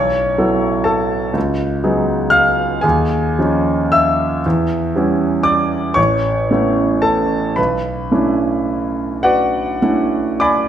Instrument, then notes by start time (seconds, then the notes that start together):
grand piano
Already playing: B1 C#5 C#6
0.38 F#3 B3 E4 A4
0.84 A4 A5
1.33 C#2
1.84 F#3 B3 D#4 G#4
2.30 F5 F6
2.81 D#2 G#4 G#5
3.39 F3 C#4 D#4 F4
3.92 E5 E6
4.46 E2
4.95 G3 B3 C#4 E4
5.43 D5 D6
5.94 A1 C#5 C#6
6.51 A3 B3 C#4 E4
7.02 A4 A5
7.56 B1 B4 B5
8.12 A3 C#4 D4 E4
9.23 F#4 B4 D5 F#5
9.82 A3 C#4 D4 E4
10.40 D5 G#5 B5 D6